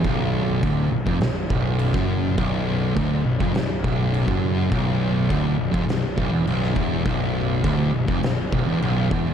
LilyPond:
<<
  \new Staff \with { instrumentName = "Distorted electric guitar" } { \clef bass \time 4/4 \key b \minor \tempo 4 = 103 b,,4 d,8 b,,16 eis,16 b,,8 b,,8. fis,8. | b,,4 d,8 b,,16 eis,16 b,,8 b,,8. fis,8. | b,,4 d,8 b,,16 eis,16 b,,8 b,,16 e,16 b,,8 e,8 | b,,4 d,8 b,,16 eis,16 b,,8 b,,16 e,16 b,,8 e,8 | }
  \new Staff \with { instrumentName = "Distorted electric guitar" } { \clef bass \time 4/4 \key b \minor b,,4 d,8 b,,16 eis,16 b,,8 b,,8. fis,8. | b,,4 d,8 b,,16 eis,16 b,,8 b,,8. fis,8. | b,,4 d,8 b,,16 eis,16 b,,8 b,,16 e,16 b,,8 e,8 | b,,4 d,8 b,,16 eis,16 b,,8 b,,16 e,16 b,,8 e,8 | }
  \new Staff \with { instrumentName = "Picked electric bass" } { \clef bass \time 4/4 \key b \minor b,,,4 d,,8 b,,,16 eis,,16 b,,,8 b,,,8. fis,,8. | b,,,4 d,,8 b,,,16 eis,,16 b,,,8 b,,,8. fis,,8. | b,,,4 d,,8 b,,,16 eis,,16 b,,,8 b,,,16 e,,16 b,,,8 e,,8 | b,,,4 d,,8 b,,,16 eis,,16 b,,,8 b,,,16 e,,16 b,,,8 e,,8 | }
  \new DrumStaff \with { instrumentName = "Drums" } \drummode { \time 4/4 <cymc bd>4 <cymc bd>8. bd16 <cymc sn>8 bd8 cymc16 <bd sn>8. | <cymc bd>4 <cymc bd>8. bd16 <cymc sn>8 bd8 cymc16 bd8. | <cymc bd>4 <cymc bd>8. bd16 <cymc sn>8 bd8 cymc16 sn16 bd8 | <cymc bd>4 <cymc bd>8. bd16 <cymc sn>8 bd8 cymc8 bd8 | }
>>